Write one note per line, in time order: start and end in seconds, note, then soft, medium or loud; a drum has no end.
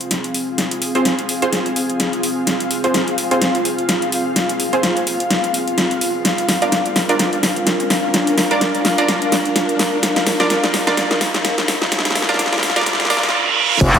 0.00 6.21 C4 medium
0.00 7.59 C4 medium
0.00 13.34 F4 medium
0.00 13.77 F4 medium
0.00 6.21 G#4 medium
0.00 7.93 G#4 medium
0.00 13.34 F5 medium
0.00 13.77 F5 medium
0.00 closed hi-hat soft
0.00 riser medium
0.11 snare soft
0.11 closed hi-hat medium
0.24 closed hi-hat soft
0.34 open hi-hat loud
0.58 snare soft
0.58 closed hi-hat medium
0.71 closed hi-hat soft
0.82 open hi-hat loud
0.95 1.09 C4 medium
0.95 1.09 F4 medium
0.95 1.09 G#4 medium
0.95 1.09 C5 loud
0.95 closed hi-hat soft
1.05 snare medium
1.05 closed hi-hat medium
1.19 closed hi-hat soft
1.29 open hi-hat loud
1.42 1.50 C4 medium
1.42 1.50 F4 medium
1.42 1.50 G#4 medium
1.42 1.50 C5 loud
1.42 closed hi-hat medium
1.53 snare soft
1.53 closed hi-hat medium
1.66 closed hi-hat soft
1.76 open hi-hat loud
1.90 closed hi-hat soft
2.00 snare medium
2.00 closed hi-hat medium
2.13 closed hi-hat soft
2.23 open hi-hat loud
2.47 snare medium
2.47 closed hi-hat medium
2.60 closed hi-hat soft
2.71 open hi-hat loud
2.84 2.98 C4 medium
2.84 2.98 F4 medium
2.84 2.98 G#4 medium
2.84 2.98 C5 medium
2.84 closed hi-hat soft
2.94 snare medium
2.94 closed hi-hat medium
3.08 closed hi-hat soft
3.18 open hi-hat loud
3.31 3.39 C4 loud
3.31 3.39 F4 medium
3.31 3.39 G#4 medium
3.31 3.39 C5 loud
3.31 closed hi-hat soft
3.42 snare medium
3.42 closed hi-hat medium
3.55 closed hi-hat soft
3.65 open hi-hat loud
3.79 closed hi-hat soft
3.89 snare medium
3.89 closed hi-hat medium
4.02 closed hi-hat soft
4.12 open hi-hat loud
4.36 snare medium
4.36 closed hi-hat medium
4.49 closed hi-hat soft
4.60 open hi-hat loud
4.73 4.86 C4 medium
4.73 4.86 F4 medium
4.73 4.86 G#4 medium
4.73 4.86 C5 loud
4.73 closed hi-hat soft
4.83 snare medium
4.83 closed hi-hat medium
4.97 closed hi-hat soft
5.07 open hi-hat loud
5.20 closed hi-hat soft
5.30 snare medium
5.30 closed hi-hat medium
5.44 closed hi-hat soft
5.54 open hi-hat loud
5.68 closed hi-hat soft
5.78 snare medium
5.78 closed hi-hat medium
5.91 closed hi-hat soft
6.01 open hi-hat loud
6.25 13.34 D4 medium
6.25 13.77 D4 medium
6.25 13.77 A#4 medium
6.25 snare medium
6.25 closed hi-hat medium
6.37 13.34 A#4 medium
6.37 closed hi-hat soft
6.49 snare medium
6.49 open hi-hat loud
6.62 6.75 D4 medium
6.62 6.75 F4 medium
6.62 6.75 A#4 medium
6.62 6.75 D5 loud
6.62 closed hi-hat soft
6.72 snare medium
6.72 closed hi-hat medium
6.86 closed hi-hat soft
6.96 snare medium
6.96 open hi-hat loud
7.09 7.17 D4 loud
7.09 7.17 F4 medium
7.09 7.17 A#4 medium
7.09 7.17 D5 loud
7.09 closed hi-hat medium
7.19 snare medium
7.19 closed hi-hat medium
7.33 closed hi-hat soft
7.43 snare medium
7.43 open hi-hat loud
7.56 closed hi-hat soft
7.67 snare medium
7.67 closed hi-hat medium
7.80 closed hi-hat soft
7.90 snare medium
7.90 open hi-hat loud
8.14 snare medium
8.14 closed hi-hat medium
8.27 closed hi-hat medium
8.38 snare medium
8.38 open hi-hat loud
8.51 8.64 D4 medium
8.51 8.64 F4 medium
8.51 8.64 A#4 medium
8.51 8.64 D5 loud
8.51 closed hi-hat soft
8.61 snare medium
8.61 closed hi-hat medium
8.75 closed hi-hat soft
8.85 snare medium
8.85 open hi-hat loud
8.98 9.06 D4 loud
8.98 9.06 F4 medium
8.98 9.06 A#4 medium
8.98 9.06 D5 loud
8.98 closed hi-hat medium
9.08 snare medium
9.08 closed hi-hat medium
9.22 closed hi-hat soft
9.32 snare medium
9.32 open hi-hat loud
9.45 closed hi-hat soft
9.56 snare medium
9.56 closed hi-hat medium
9.69 closed hi-hat soft
9.79 snare medium
9.79 open hi-hat loud
10.03 snare medium
10.03 closed hi-hat medium
10.16 snare medium
10.16 closed hi-hat medium
10.27 snare medium
10.27 open hi-hat loud
10.40 10.53 D4 medium
10.40 10.53 F4 medium
10.40 10.53 A#4 medium
10.40 10.53 D5 loud
10.40 snare medium
10.40 closed hi-hat soft
10.50 snare medium
10.50 closed hi-hat medium
10.64 snare medium
10.64 closed hi-hat soft
10.74 snare medium
10.74 open hi-hat loud
10.87 10.95 D4 loud
10.87 10.95 F4 medium
10.87 10.95 A#4 medium
10.87 10.95 D5 loud
10.87 snare medium
10.87 closed hi-hat medium
10.97 snare loud
10.97 closed hi-hat medium
11.11 snare medium
11.11 closed hi-hat soft
11.21 snare loud
11.21 open hi-hat loud
11.34 snare medium
11.34 closed hi-hat soft
11.45 snare loud
11.45 closed hi-hat medium
11.58 snare medium
11.58 closed hi-hat soft
11.68 snare loud
11.68 open hi-hat loud
11.82 snare medium
11.92 snare loud
11.92 closed hi-hat medium
11.99 snare medium
12.05 snare medium
12.05 closed hi-hat medium
12.10 snare medium
12.16 snare loud
12.16 open hi-hat loud
12.22 snare medium
12.29 12.42 D4 medium
12.29 12.42 F4 medium
12.29 12.42 A#4 medium
12.29 12.42 D5 loud
12.29 snare medium
12.29 closed hi-hat soft
12.34 snare medium
12.39 snare loud
12.39 closed hi-hat medium
12.46 snare medium
12.53 snare medium
12.53 closed hi-hat soft
12.58 snare medium
12.63 snare loud
12.63 open hi-hat loud
12.70 snare medium
12.76 12.84 D4 loud
12.76 12.84 F4 medium
12.76 12.84 A#4 medium
12.76 12.84 D5 loud
12.76 snare medium
12.76 closed hi-hat medium
12.81 snare medium
12.86 snare loud
12.86 closed hi-hat medium
12.86 reverse cymbal medium
12.93 snare medium
13.00 snare medium
13.00 closed hi-hat soft
13.05 snare medium
13.10 13.20 D4 medium
13.10 13.20 F4 medium
13.10 13.20 A#4 medium
13.10 13.20 D5 loud
13.10 snare loud
13.10 open hi-hat loud
13.17 snare loud
13.23 snare loud
13.23 closed hi-hat soft
13.29 snare medium
13.81 13.99 F1 medium
13.81 13.99 C4 medium
13.81 13.99 F4 medium
13.81 13.99 F5 medium
13.81 kick loud
13.81 closed hi-hat medium
13.81 crash loud
13.94 kick medium
13.94 closed hi-hat medium